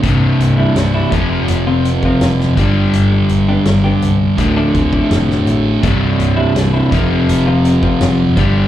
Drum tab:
HH |x-x-x-x-x-x-x-x-|x-x-x-x-x-x-x-x-|x-x-x-x-x-x-x-x-|
SD |----o-------oo--|----o-------oo--|----o-------o---|
BD |o-----o----o--o-|--------o-oo----|o-----o----o--o-|